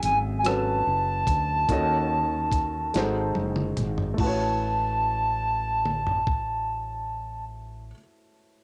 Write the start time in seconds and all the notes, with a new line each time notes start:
Already playing: F#3 C#4 G#4 A4 E5
0.03 G#1 G#5, closed hi-hat
0.39 G#5
0.43 F#3 C#4 F#4 A4 B4 A5, cross-stick, closed hi-hat
0.87 F#1
1.27 D2, kick, closed hi-hat
1.69 D#2 D#3 C#4 F#4 A4 D#5, kick, closed hi-hat
2.52 kick, closed hi-hat
2.94 G#1 G#3 D#4 F#4 A4 C5, snare, closed hi-hat
3.35 F#1, high tom
3.56 mid tom
3.77 G#1, closed hi-hat, mid tom
3.98 floor tom
4.14 A3 E4
4.18 A1 F#4 A5, kick, crash
4.23 B4 C#5
5.85 mid tom
6.06 floor tom
6.27 kick